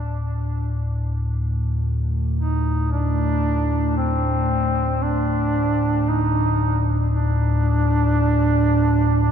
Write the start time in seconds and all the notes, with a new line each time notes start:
Already playing: D2 A2 D4
2.38 D#4
2.92 D4
3.97 C4
5.02 D4
6.09 D#4
7.14 D4